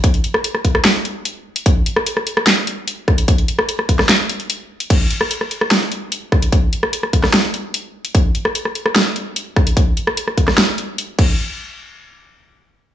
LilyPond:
\new DrumStaff \with { instrumentName = "Drums" } \drummode { \time 4/4 \tempo 4 = 148 <hh bd>16 hh16 hh16 ss16 hh16 ss16 <hh bd>16 ss16 <hc hh sn>8 hh8 hh8. hh16 | <hh bd>8 hh16 ss16 hh16 ss16 hh16 ss16 <hc hh sn>8 hh8 hh8 <bd ss>16 hh16 | <hh bd>16 hh16 hh16 ss16 hh16 ss16 <hh bd>16 <ss sn>16 <hc hh sn>8 hh16 hh16 hh8. hh16 | <cymc hh bd>8 hh16 ss16 hh16 ss16 hh16 ss16 <hh sn>8 hh8 hh8 <bd ss>16 hh16 |
<hh bd>8 hh16 ss16 hh16 ss16 <hh bd>16 <ss sn>16 <hh sn>8 hh8 hh8. hh16 | <hh bd>8 hh16 ss16 hh16 ss16 hh16 ss16 <hh sn>8 hh8 hh8 <bd ss>16 hh16 | <hh bd>8 hh16 ss16 hh16 ss16 <hh bd>16 <ss sn>16 <hh sn>8 hh8 hh8 <cymc bd>8 | r4 r4 r4 r4 | }